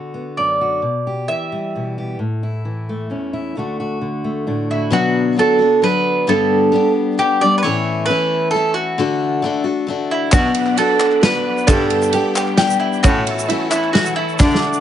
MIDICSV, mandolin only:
0, 0, Header, 1, 2, 480
1, 0, Start_track
1, 0, Tempo, 455235
1, 869, Time_signature, 3, 2, 24, 8
1, 5188, Tempo, 450789
1, 15710, End_track
2, 0, Start_track
2, 0, Title_t, "Mandolin"
2, 0, Program_c, 0, 25
2, 393, Note_on_c, 0, 74, 55
2, 1348, Note_off_c, 0, 74, 0
2, 1352, Note_on_c, 0, 76, 73
2, 2030, Note_off_c, 0, 76, 0
2, 4963, Note_on_c, 0, 64, 60
2, 5179, Note_off_c, 0, 64, 0
2, 5200, Note_on_c, 0, 66, 91
2, 5643, Note_off_c, 0, 66, 0
2, 5689, Note_on_c, 0, 69, 97
2, 6162, Note_on_c, 0, 71, 108
2, 6175, Note_off_c, 0, 69, 0
2, 6646, Note_on_c, 0, 69, 98
2, 6651, Note_off_c, 0, 71, 0
2, 7317, Note_off_c, 0, 69, 0
2, 7603, Note_on_c, 0, 67, 101
2, 7843, Note_on_c, 0, 74, 121
2, 7845, Note_off_c, 0, 67, 0
2, 8008, Note_off_c, 0, 74, 0
2, 8019, Note_on_c, 0, 71, 96
2, 8065, Note_off_c, 0, 71, 0
2, 8070, Note_on_c, 0, 73, 105
2, 8522, Note_off_c, 0, 73, 0
2, 8527, Note_on_c, 0, 71, 118
2, 8984, Note_off_c, 0, 71, 0
2, 9007, Note_on_c, 0, 69, 93
2, 9241, Note_off_c, 0, 69, 0
2, 9256, Note_on_c, 0, 66, 87
2, 10180, Note_off_c, 0, 66, 0
2, 10717, Note_on_c, 0, 64, 82
2, 10952, Note_off_c, 0, 64, 0
2, 10956, Note_on_c, 0, 66, 102
2, 11427, Note_off_c, 0, 66, 0
2, 11432, Note_on_c, 0, 69, 104
2, 11907, Note_on_c, 0, 71, 117
2, 11925, Note_off_c, 0, 69, 0
2, 12378, Note_on_c, 0, 69, 99
2, 12403, Note_off_c, 0, 71, 0
2, 13061, Note_off_c, 0, 69, 0
2, 13343, Note_on_c, 0, 67, 116
2, 13571, Note_off_c, 0, 67, 0
2, 13575, Note_on_c, 0, 64, 106
2, 13805, Note_off_c, 0, 64, 0
2, 13821, Note_on_c, 0, 66, 114
2, 14538, Note_off_c, 0, 66, 0
2, 14542, Note_on_c, 0, 64, 101
2, 14769, Note_off_c, 0, 64, 0
2, 14782, Note_on_c, 0, 66, 99
2, 15020, Note_off_c, 0, 66, 0
2, 15024, Note_on_c, 0, 64, 107
2, 15251, Note_off_c, 0, 64, 0
2, 15269, Note_on_c, 0, 62, 74
2, 15710, Note_off_c, 0, 62, 0
2, 15710, End_track
0, 0, End_of_file